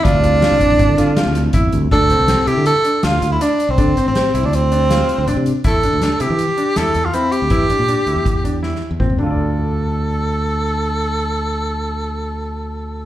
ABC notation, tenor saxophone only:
X:1
M:5/4
L:1/16
Q:1/4=161
K:Dm
V:1 name="Tenor saxophone"
D16 z4 | A6 G2 A4 F3 E D3 C- | C3 C4 D C8- C2 z2 | A6 G6 A3 F E2 G2- |
G16 z2 A2- | A16- A4- | A16- A4 |]